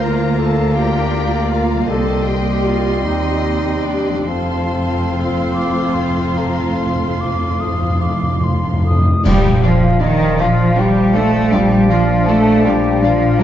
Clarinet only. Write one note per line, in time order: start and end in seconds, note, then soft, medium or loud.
0.01 0.41 A#4 medium
0.39 0.79 A4 medium
0.77 1.53 G4 medium
1.52 1.89 F4 medium
1.91 2.29 A4 medium
2.28 2.69 G4 medium
2.67 3.07 F4 medium
3.05 3.88 D#4 medium
3.86 4.28 D4 medium
4.29 7.98 C4 medium
9.26 13.43 D5 medium